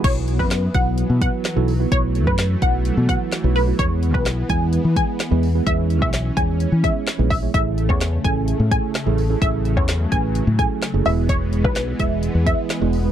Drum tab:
CC |x---------------|----------------|----------------|----------------|
HH |x-x-x-x-x-x-x-o-|x-x-x-x-x-x-x-o-|x-x-x-x-x-x-x-o-|x-x-x-x-x-x-x-o-|
CP |----x-------x---|----x-------x---|----x-------x---|----x-------x---|
SD |----o-------o---|----o-------o---|----o-------o---|----o-------o---|
BD |o--o--o---o-----|o--o--o---o-----|o--o--o---o-----|o--o--o---o---o-|

CC |----------------|----------------|----------------|
HH |x-x-x-x-x-x-x-o-|x-x-x-x-x-x-x-o-|x-x-x-x-x-x-x-o-|
CP |----x-------x---|----x-------x---|----x-------x---|
SD |----o-------o---|----o-------o---|----o-------o---|
BD |o--o--o---o-----|o--o--o---o-----|o--o--o---o-----|